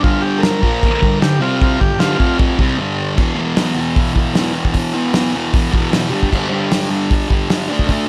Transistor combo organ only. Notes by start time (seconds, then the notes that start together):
0.03 F4
0.21 G4
0.38 A4 A#4
1.22 G4
1.42 F4
1.62 F4
1.80 G4
1.99 F4